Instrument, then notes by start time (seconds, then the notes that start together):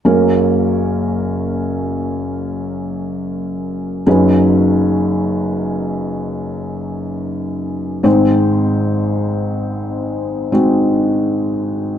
felt piano
0.05 F#1 F#2 F#3 A#3 C#4 A#4
4.06 F#1 F#2 F#3 C#4 D#4 B4
8.03 G#1 G#2 G#3 C4 D#4 C5
10.52 G#3 C4 D#4 F#4